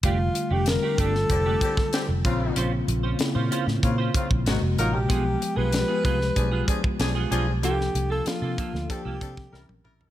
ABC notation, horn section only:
X:1
M:4/4
L:1/16
Q:1/4=95
K:F
V:1 name="Horn section"
z8 [D,CG] z [D,CG] z [D,CG] z [_D,CF]2- | [_D,CF] z6 z [D,CF] z [D,CF] z [_E,C_G] z [_G,_EB]2 | z8 [F,D_A] z [F,DA] z [F,DA] z [F,DA]2 | z8 [F,DA] z [F,DA] z [G,EB] z [G,EB]2 |]